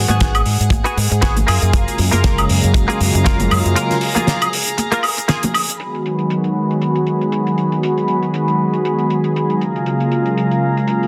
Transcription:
Already playing: G#4 F#5
0.08 G#2 D#3 F#3 G#3 B3 F#4 G#4, closed hi-hat, high conga, cabasa
0.20 G#1, kick, snare, closed hi-hat, cabasa
0.35 closed hi-hat, cabasa, high woodblock
0.46 G#2, open hi-hat
0.60 G#2, closed hi-hat, cabasa
0.70 G#1, muted clean electric guitar stroke, kick, closed hi-hat, high conga, cabasa
0.84 B3 F#4 G#4, closed hi-hat, cabasa
0.97 G#2, open hi-hat
1.10 G#2, muted clean electric guitar stroke, closed hi-hat, cabasa
1.21 G#1 B3 F#4 G#4, kick, snare, closed hi-hat, cabasa
1.36 closed hi-hat, high conga, low conga, cabasa
1.47 F#2 A#3 F4 G#4 F5 A#5, open hi-hat, high woodblock
1.62 F#2, closed hi-hat, cabasa
1.73 F#1 C#3 F#3 G#3 A#3 F4, kick, closed hi-hat, cabasa
1.88 closed hi-hat, cabasa
1.98 F#2, open hi-hat
2.11 F#2 C#3 F#3 G#3 A#3 F4 A#4, closed hi-hat, high conga, cabasa
2.24 F#1, kick, snare, closed hi-hat, cabasa
2.38 closed hi-hat, cabasa, high woodblock
2.49 F#2, open hi-hat
2.63 F#2, closed hi-hat, cabasa
2.74 F#1, muted clean electric guitar stroke, kick, closed hi-hat, high conga, cabasa
2.88 A#3 F4 G#4, closed hi-hat, cabasa
2.99 F#2 C#3 F#3 G#3 A#3 F4, open hi-hat
3.14 F#2, muted clean electric guitar stroke, closed hi-hat, cabasa
3.25 F#1 A#3 F4 A#4, kick, snare, closed hi-hat, cabasa
3.40 closed hi-hat, high conga, low conga, cabasa
3.50 F#2, muted clean electric guitar stroke, open hi-hat, high woodblock
3.66 F#2, closed hi-hat, cabasa
3.76 C#3 F#3 G#3 A#3 F4 A#4, closed hi-hat, cabasa
3.91 snare, closed hi-hat, cabasa
4.01 open hi-hat
4.15 C#3 F#3 G#3 A#3 F4 F#4 G#4, closed hi-hat, high conga, low conga, cabasa
4.27 snare, closed hi-hat, cabasa
4.42 closed hi-hat, cabasa, high woodblock
4.53 open hi-hat
4.66 closed hi-hat, cabasa
4.78 muted clean electric guitar stroke, closed hi-hat, high conga, cabasa
4.92 A#3 F4 A#4, closed hi-hat, cabasa
5.03 open hi-hat, high woodblock
5.17 muted clean electric guitar stroke, closed hi-hat, cabasa
5.28 A#3 F4 G#4, snare, closed hi-hat, cabasa
5.43 closed hi-hat, high conga, low conga, cabasa
5.54 muted clean electric guitar stroke, open hi-hat, high woodblock
5.69 closed hi-hat, cabasa
5.79 D#3 F#3 G#3 B3 F#4 G#4 B5, closed hi-hat
5.95 closed hi-hat
6.06 closed hi-hat
6.19 closed hi-hat
6.30 closed hi-hat
6.44 closed hi-hat
6.71 closed hi-hat
6.82 closed hi-hat
6.96 closed hi-hat
7.07 closed hi-hat
7.21 closed hi-hat
7.32 closed hi-hat
7.47 closed hi-hat
7.58 closed hi-hat
7.72 closed hi-hat
7.83 closed hi-hat
7.98 closed hi-hat
8.08 closed hi-hat
8.23 closed hi-hat
8.34 closed hi-hat
8.48 closed hi-hat
8.74 closed hi-hat
8.85 closed hi-hat
8.99 closed hi-hat
9.10 closed hi-hat
9.24 closed hi-hat
9.36 closed hi-hat
9.50 closed hi-hat
9.60 C#3 F#3 G#3 A#3 F4 F5 A#5, closed hi-hat
9.76 closed hi-hat
9.86 closed hi-hat
10.00 closed hi-hat
10.12 closed hi-hat
10.26 closed hi-hat
10.38 closed hi-hat
10.51 closed hi-hat
10.77 closed hi-hat
10.88 closed hi-hat
11.03 closed hi-hat

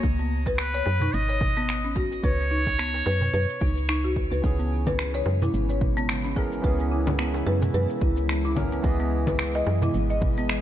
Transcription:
0.03 C#2, kick, shaker
0.19 B3, shaker
0.46 B4, kick, darbuka tek, shaker
0.58 B4, finger snap, shaker
0.74 C#5, darbuka tek, shaker
0.86 F#2, darbuka tek
1.00 D#4, darbuka ka, darbuka dum, shaker
1.13 G#1 D#5, shaker
1.29 C#5, darbuka ka, shaker
1.40 kick, darbuka tek, darbuka dum
1.57 B3, shaker
1.69 finger snap, shaker
1.85 C#4, shaker
1.96 F#4, kick, darbuka tek
2.11 darbuka ka, shaker
2.24 C#2 B4 C#5, kick, shaker
2.40 shaker
2.51 D#4
2.67 kick, darbuka tek, shaker
2.79 B3, finger snap, shaker
2.94 darbuka tek, shaker
3.06 F#2 B4, darbuka tek
3.21 darbuka ka, darbuka dum, shaker
3.34 F#2 B4, shaker
3.50 shaker
3.61 C#2 D#4, kick, darbuka ka, darbuka tek
3.77 shaker
3.89 D#4, finger snap, shaker
4.04 F#4, shaker
4.16 kick, darbuka ka
4.32 C#2 B4, shaker
4.42 C#2 C#3 E3 B3 C#4, kick, shaker
4.46 G#4
4.59 B3, shaker
4.87 B4, kick, darbuka tek, low conga, shaker
4.93 G#3
4.99 finger snap, shaker
5.14 C#5, darbuka tek, shaker
5.25 F#2 B3, darbuka tek
5.42 E4, darbuka ka, darbuka dum, shaker
5.54 G#1, shaker
5.69 C#5, darbuka ka, shaker
5.81 kick, darbuka tek, darbuka dum
5.97 B3, shaker
6.09 finger snap, shaker
6.25 C#4, shaker
6.32 E4
6.36 E3 B3 C#4 G#4 A#4, kick, darbuka tek
6.51 darbuka ka, shaker
6.62 C#2 E3 B3 C#4 G#4 B4, kick, shaker
6.80 shaker
6.91 E4
7.07 darbuka tek, low conga, shaker
7.19 B3, finger snap, shaker
7.34 darbuka tek, shaker
7.47 F#2 B4, darbuka tek
7.62 darbuka ka, darbuka dum, shaker
7.74 F#2 B4, shaker
7.90 shaker
8.01 C#2 E4, kick, darbuka ka
8.17 shaker
8.29 B3, finger snap, shaker
8.45 E4, shaker
8.56 E3 B3 C#4 A#4, kick, darbuka ka, low conga
8.72 B3, shaker
8.82 C#2 E3 B3 D#5, kick, shaker
8.86 G#4
9.00 B3, shaker
9.23 D#5, kick, darbuka tek, low conga, shaker
9.28 B4
9.39 finger snap, shaker
9.55 D#5, darbuka tek, shaker
9.67 F#2, darbuka tek
9.82 E4, darbuka ka, darbuka dum, shaker
9.94 G#1, shaker
10.10 D#5, darbuka ka, shaker
10.21 kick, darbuka tek, darbuka dum
10.37 B3, shaker
10.49 finger snap, shaker

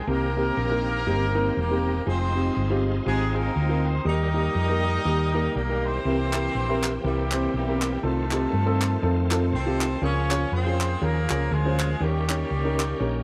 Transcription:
0.07 C2 C3 D#3 A#3 C4 D#4 G4 A#4
0.36 A#3 C4 D#4 G4
0.57 A#1
0.71 A#3 C4 D#4 A#4
1.06 G1 A#3 C4 D#4 G4
1.35 A#3 C4 D#4 A#4
1.57 E1 A#3 D#4 G4 A#4
1.71 A#3 C4 D#4 G4
2.06 F1 G#3 C4 D#4 F4 G#4 C5
2.35 C4 D#4 F4 G4
2.57 G1
2.70 C4 D#4 F4 G4
3.05 G#1 G#3 C4 D#4 F4 G4 G#4
3.34 A#3 C4 D#4 F4 G#4 A#4
3.56 D2
3.69 C4 D#4 F4 A#4
3.85 C4 C5
4.04 D#2 D#3 G3 A#3 D#4 F#4 G4 A#4 D#5
4.11 G4
4.34 A#3 D#4 G4 A#4
4.55 F2
4.69 A#3 D#4 G4 A#4
5.05 D#2 A#3 D#4 G4 A#4
5.34 A#3 D#4 G4 A#4
5.55 B1 A#3 A#4
5.69 A#3 D#4 G4 A#4
5.84 C4 E4 G4 C5
6.04 C2 C3 E3 A#3 C4 E4 F4 G4 A#4
6.10 G4
6.33 C4 E4 G4 A#4, clap
6.55 A#1
6.69 C4 E4 G4 A#4
6.83 clap
7.04 C2 G3 A#3 C4 E4 G4 A#4
7.31 C4 E4 G4 C5, clap
7.54 B1 G3 A#3 E4 G4
7.67 C4 E4 G4 A#4
7.82 clap
8.02 C2 C3 D#3 A3 C4 D#4 F4 A4
8.31 C4 D#4 F4 G4, clap
8.53 G2
8.66 C4 D#4 F4 A4
8.81 clap
9.02 F2 C4 D#4 F4 A4
9.31 C4 D#4 F4 A4, clap
9.52 C2 C4 D#4 A4 C5
9.66 C4 D#4 F4 G4
9.81 clap
10.02 C#2 C#3 F3 A#3 C4 C#4 F4 G#4 A#4 C#5
10.08 C#4
10.30 C#4 F4 G#4 C#5, clap
10.52 F2 C4 F4 G#4 C5
10.66 C#4 F4 G#4 C5
10.81 clap
11.01 D#2 A#3 C#4 F4 G#4 A#4
11.30 C#2 C#4 F4 G#4 A#4, clap
11.51 D2 G#3 F4 G#4
11.65 C#4 F4 G#4 C5
11.79 clap
12.00 D#2 D#3 G3 A#3 C#4 D#4 G4 A#4
12.29 C#4 D#4 G4 C#5, clap
12.51 C#2
12.64 C#4 D#4 G4 A#4
12.80 clap
13.00 A#1 C#4 D#4 G4 A#4

